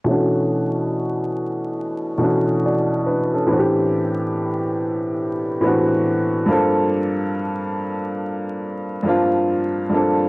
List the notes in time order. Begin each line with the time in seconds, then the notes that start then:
0.04 B2 E3 A3 C#4
0.09 D4 F#4
2.18 B2 E3 A3 C#4
2.22 D4 F#4
2.66 F#4 D5
3.06 D4 B4
3.34 C#4 A4
3.47 A2 E3 B3 C4
3.51 D4 F#4
3.59 G4
5.61 A2 E3 B3 C4
5.65 D4 F#4
6.46 G2 F3 A#3 C4
6.51 D4 A4
9.03 G2 F3 A#3 C4
9.08 D4 F4
9.89 G2 F3 A#3 C4
9.94 D4 A4